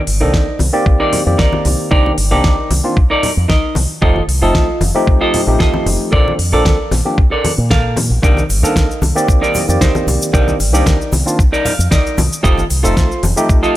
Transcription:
0.07 fingered electric bass G1, open hi-hat
0.20 fingered electric bass C2, tine electric piano D#3 A#3 C4 D4 A4, clean electric guitar D#4 A#4 D5
0.34 kick, snare
0.59 fingered electric bass C2, open hi-hat, high conga
0.73 tine electric piano D#3 A#3 C4 G4 D5
0.86 kick
1.00 clean electric guitar D#4 A#4 D5
1.13 open hi-hat, low conga
1.25 fingered electric bass F2, tine electric piano D#3 A#3 C4 G4 D5
1.38 clean electric guitar D#4 A#4 D5, kick, snare
1.53 high conga
1.65 fingered electric bass C2, open hi-hat, low conga
1.91 fingered electric bass C2, tine electric piano D#3 A#3 C4 D4 G4, clean electric guitar D#4 A#4 D5, kick
2.06 high conga
2.17 fingered electric bass G1, open hi-hat
2.31 fingered electric bass C2, tine electric piano D#3 A#3 C4 D4 G4, clean electric guitar D#4 A#4 D5
2.44 kick, snare
2.70 fingered electric bass C2, open hi-hat, high conga
2.83 tine electric piano D#3 A#3 C4 D4 F4
2.97 kick
3.10 clean electric guitar D#4 A#4 D5
3.23 open hi-hat, low conga
3.37 fingered electric bass F2
3.48 clean electric guitar D#4 A#4 D#5, kick, snare
3.75 fingered electric bass C2, open hi-hat, high conga, low conga
4.01 fingered electric bass F1, tine electric piano F3 A3 C4 D#4 G4, clean electric guitar F4 A4 D#5, kick
4.16 high conga
4.28 fingered electric bass C2, open hi-hat
4.42 fingered electric bass F1, tine electric piano F3 A3 C4 D#4 A4, clean electric guitar F4 A4 D#5
4.55 kick, snare
4.80 fingered electric bass F1, open hi-hat, high conga
4.95 tine electric piano F3 A3 C4 D#4 G4
5.07 kick
5.21 clean electric guitar F4 A4 D#5
5.34 open hi-hat, low conga
5.46 fingered electric bass A1, tine electric piano F3 A3 C4 D#4 G4
5.59 clean electric guitar F4 A4 D#5, kick, snare
5.74 high conga
5.86 fingered electric bass F1, open hi-hat, low conga
6.12 fingered electric bass A#1, tine electric piano F3 A#3 C4 D4 A4, clean electric guitar A4 A#4 D5, kick
6.28 high conga
6.38 fingered electric bass F2, open hi-hat
6.52 fingered electric bass A#1, tine electric piano F3 A#3 C4 D4 A4, clean electric guitar A4 A#4 D5
6.65 kick, snare
6.91 fingered electric bass A#1, snare, open hi-hat, high conga
7.05 tine electric piano F3 A#3 C4 D4 G4
7.18 kick
7.31 clean electric guitar A4 A#4 D5
7.44 open hi-hat, high conga, low conga
7.58 fingered electric bass A#2
7.70 clean electric guitar A4 A#4 F5, kick, snare
7.96 open hi-hat, high conga, low conga
8.10 fingered electric bass A#1
8.22 fingered electric bass C2, tine electric piano D#3 A#3 C4 D4 G4, clean electric guitar D#4 A#4 D5, kick, cabasa, shaker
8.37 high conga, shaker
8.49 fingered electric bass G1, open hi-hat, cabasa
8.63 fingered electric bass C2, tine electric piano D#3 A#3 C4 D4 A4, clean electric guitar D#4 A#4 F5, cabasa, shaker
8.76 kick, snare, cabasa, shaker
8.91 shaker
9.01 fingered electric bass C2, open hi-hat, high conga, cabasa
9.15 tine electric piano D#3 A#3 C4 G4 D5, cabasa, shaker
9.28 kick, cabasa, shaker
9.41 clean electric guitar D#4 A#4 D5, shaker
9.54 open hi-hat, low conga, cabasa
9.68 fingered electric bass F2, tine electric piano D#3 A#3 C4 G4 D5, cabasa, shaker
9.81 clean electric guitar D#4 A#4 C5, kick, snare, cabasa, shaker
9.95 high conga, shaker
10.07 fingered electric bass C2, open hi-hat, low conga, cabasa
10.22 cabasa, shaker
10.33 fingered electric bass C2, tine electric piano D#3 A#3 C4 D4 G4, clean electric guitar D#4 A#4 D5, kick, cabasa, shaker
10.48 high conga, shaker
10.59 fingered electric bass G1, open hi-hat, cabasa
10.73 fingered electric bass C2, tine electric piano D#3 A#3 C4 D4 G4, clean electric guitar D#4 A#4 D5, cabasa, shaker
10.86 kick, snare, cabasa, shaker
11.02 shaker
11.12 fingered electric bass C2, open hi-hat, high conga, cabasa
11.26 tine electric piano D#3 A#3 C4 D4 F4, cabasa, shaker
11.39 kick, cabasa, shaker
11.52 clean electric guitar D#4 A#4 D5, shaker
11.65 clean electric guitar F5, open hi-hat, low conga, cabasa
11.79 fingered electric bass F2, cabasa, shaker
11.91 clean electric guitar D#4 A#4 D5 D#5, kick, snare, cabasa, shaker
12.07 shaker
12.18 fingered electric bass C2, open hi-hat, high conga, low conga, cabasa
12.32 cabasa, shaker
12.43 fingered electric bass F1, tine electric piano F3 A3 C4 D#4 G4, clean electric guitar F4 A4 D#5, kick, cabasa, shaker
12.58 high conga, shaker
12.70 fingered electric bass C2, open hi-hat, cabasa
12.83 fingered electric bass F1, tine electric piano F3 A3 C4 D#4 A4, clean electric guitar F4 A4 C5, cabasa, shaker
12.97 kick, snare, cabasa, shaker
13.12 shaker
13.23 fingered electric bass F1, open hi-hat, high conga, cabasa
13.36 tine electric piano F3 A3 C4 D#4 G4, cabasa, shaker
13.49 kick, cabasa, shaker
13.63 clean electric guitar F4 A4 D#5, shaker

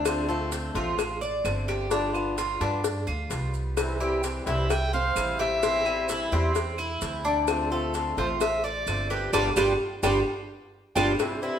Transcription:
Already playing: upright bass D2, cuban tres D4
0.05 steel-string acoustic guitar D3 A3 C4 F4, cowbell, claves, maracas
0.28 steel-string acoustic guitar A3 C4 F4, cuban tres A4, maracas
0.51 steel-string acoustic guitar D3 A3 C4 F4, cowbell, maracas
0.74 upright bass A1, steel-string acoustic guitar A3 C4 F4, cuban tres F4, cowbell, maracas
0.98 muted steel-string acoustic guitar stroke, cowbell, claves, maracas
1.21 cuban tres D5, maracas
1.44 upright bass G1, steel-string acoustic guitar D3 A3 C4 F4, cowbell, claves, maracas
1.68 cuban tres G4, cowbell, maracas
1.90 steel-string acoustic guitar G3 B3 F4, cuban tres D4, cowbell, maracas
2.13 steel-string acoustic guitar B3 F4, claves, maracas
2.36 steel-string acoustic guitar G3 B3 F4, cuban tres F4, cowbell, maracas
2.60 upright bass G2, steel-string acoustic guitar B3 F4, cuban tres D4, cowbell, maracas
2.83 muted steel-string acoustic guitar stroke, cowbell, maracas
3.07 upright bass D2, cuban tres F4, claves, maracas
3.30 upright bass C2, steel-string acoustic guitar G3 B3 F4, cowbell, maracas
3.54 maracas
3.77 steel-string acoustic guitar C3 E3 G3 C4 E4, cowbell, claves, maracas
4.00 steel-string acoustic guitar E3 G3 C4 E4, cuban tres G4, maracas
4.23 steel-string acoustic guitar E3 G3 C4 E4, cowbell, maracas
4.46 upright bass C2, steel-string acoustic guitar E3 G3 C4 E4, cuban tres E4, nylon-string guitar C5, clarinet E5, cowbell, maracas
4.69 nylon-string guitar E5, clarinet G5, muted steel-string acoustic guitar stroke, cowbell, claves, maracas
4.93 cuban tres C5, nylon-string guitar C5, clarinet F5, maracas
5.15 upright bass A1, steel-string acoustic guitar E3 G3 C4 E4, cowbell, claves, maracas
5.39 cuban tres G4, nylon-string guitar C5, clarinet E5, cowbell, maracas
5.62 steel-string acoustic guitar E3 G3 C4 E4, cuban tres C4, cowbell, maracas
5.85 steel-string acoustic guitar G3 C4 E4, claves, maracas
6.08 steel-string acoustic guitar E3 G3 C4 E4, cuban tres E4, cowbell, maracas
6.32 upright bass E2, steel-string acoustic guitar G3 C4 E4, cuban tres C4, cowbell, maracas
6.55 muted steel-string acoustic guitar stroke, cowbell, maracas
6.78 cuban tres E4, claves, maracas
7.01 upright bass D2, steel-string acoustic guitar E3 G3 C4 E4, cowbell, maracas
7.24 cuban tres D4, maracas
7.47 steel-string acoustic guitar D3 A3 C4 F4, cowbell, claves, maracas
7.71 steel-string acoustic guitar A3 C4 F4, cuban tres A4, maracas
7.94 steel-string acoustic guitar D3 A3 C4 F4, cowbell, maracas
8.17 upright bass A1, steel-string acoustic guitar A3 C4 F4, cuban tres F4, nylon-string guitar A4, clarinet C5, cowbell, maracas
8.40 nylon-string guitar C5, clarinet E5, muted steel-string acoustic guitar stroke, cowbell, claves, maracas
8.63 nylon-string guitar A4, cuban tres D5, clarinet D5, maracas
8.86 upright bass G1, steel-string acoustic guitar D3 A3 C4 F4, cowbell, claves, maracas
9.10 cuban tres G4, nylon-string guitar G4, clarinet B4, cowbell, maracas
9.33 upright bass G1, steel-string acoustic guitar G3 B3 D4, cuban tres D4 F4 G4, nylon-string guitar F4 G4 B4, clarinet D5, cowbell, claves, maracas
9.56 upright bass G1, steel-string acoustic guitar G3 B3 D4, cuban tres D4 F4 G4, nylon-string guitar F4 G4 B4, clarinet D5, cowbell, claves, maracas
10.03 upright bass G1, steel-string acoustic guitar G3 B3 D4, cuban tres D4 F4 G4, nylon-string guitar F4 G4 B4, clarinet D5, cowbell, claves, maracas
10.96 upright bass G1, steel-string acoustic guitar G3 B3 D4, cuban tres D4 F4 G4, nylon-string guitar F4 G4 B4, clarinet D5, cowbell, claves, maracas
11.19 steel-string acoustic guitar C3 E3 G3 C4 E4, cowbell, claves, maracas
11.42 steel-string acoustic guitar E3 G3 C4 E4, cuban tres E4, maracas

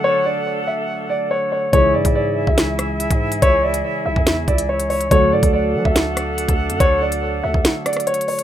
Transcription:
Already playing: synth keys D3 F#3 A3 F#4 A4, flute section D4 A4 F#5
0.04 grand piano C#5
0.25 grand piano D5
0.67 grand piano E5
1.10 grand piano D5
1.31 grand piano C#5
1.52 grand piano C#5
1.72 808-style bass C#2, synth keys C#3 E3 G#3 E4 G#4, flute section E4 G#4 E5, grand piano C#5, kick, closed hi-hat
1.94 808-style bass G#2, grand piano D5
2.05 808-style bass G#2, kick, closed hi-hat
2.15 grand piano D5
2.47 808-style bass C#2, grand piano E5, kick
2.58 snare, closed hi-hat
2.79 cross-stick, closed hi-hat
3.00 closed hi-hat
3.11 808-style bass G#2, kick, closed hi-hat
3.32 closed hi-hat
3.42 808-style bass C#2, grand piano C#5, kick, closed hi-hat
3.63 grand piano D5
3.74 closed hi-hat
4.06 808-style bass B1, grand piano E5
4.16 808-style bass E2, kick
4.27 snare, closed hi-hat
4.48 808-style bass C#2, grand piano D5, kick, closed hi-hat
4.58 closed hi-hat
4.69 grand piano C#5
4.80 closed hi-hat
4.90 grand piano C#5, open hi-hat
5.01 closed hi-hat
5.10 808-style bass D2, synth keys D3 F#3 A3 F#4 A4, flute section D4 A4 F#5, grand piano C#5, kick, closed hi-hat
5.32 808-style bass A2, grand piano D5
5.43 808-style bass D2, kick, closed hi-hat
5.53 grand piano D5
5.75 808-style bass F#3
5.85 808-style bass D2, grand piano E5, kick
5.96 snare, closed hi-hat
6.17 cross-stick, closed hi-hat
6.38 closed hi-hat
6.49 808-style bass D2, kick, closed hi-hat
6.70 808-style bass F#2, closed hi-hat
6.80 808-style bass D2, grand piano C#5, kick, closed hi-hat
7.01 grand piano D5
7.12 closed hi-hat
7.43 808-style bass D2, grand piano E5
7.54 808-style bass D2, kick
7.65 snare, closed hi-hat
7.86 grand piano D5, cross-stick, closed hi-hat
7.93 cross-stick, closed hi-hat
8.00 closed hi-hat
8.07 grand piano C#5, closed hi-hat
8.14 closed hi-hat
8.21 closed hi-hat
8.28 grand piano C#5, open hi-hat
8.39 closed hi-hat

